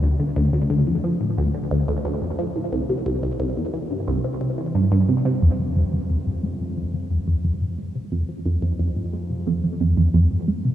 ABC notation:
X:1
M:4/4
L:1/16
Q:1/4=89
K:Dphr
V:1 name="Synth arpeggio sound" clef=bass
D,, D, D,, D,, D,, F,, F, A,, D,, D, D,, D,, D,, F,, F, A,, | C,, C, C,, C,, C,, =E,, =E, G,, C,, C, C, E, G,, G,, C, C, | [K:Fm] F,, F, F,, F,, F,, A,, A, C, F,, F, F,, F,, F,, A,, A, C, | F,, F, F,, F,, F,, A,, A, C, F,, F, F,, F,, F,, A,, A, C, |]